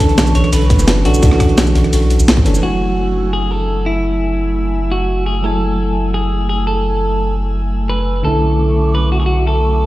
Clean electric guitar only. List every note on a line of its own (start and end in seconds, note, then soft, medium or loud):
0.00 0.35 A4 loud
0.35 0.52 C#5 loud
0.53 1.05 B4 medium
1.05 2.24 F#4 medium
2.63 3.33 F#4 medium
3.33 3.51 G#4 medium
3.51 3.86 A4 loud
3.86 4.95 E4 medium
4.92 5.24 F#4 medium
5.26 5.44 G#4 medium
5.44 6.14 A4 loud
6.14 6.48 G#4 medium
6.49 6.67 G#4 medium
6.67 7.33 A4 medium
7.89 8.24 B4 loud
8.25 8.91 A4 medium
8.95 9.11 B4 medium
9.12 9.19 F#4 medium
9.20 9.26 G#4 medium
9.26 9.47 F#4 medium
9.47 9.86 A4 medium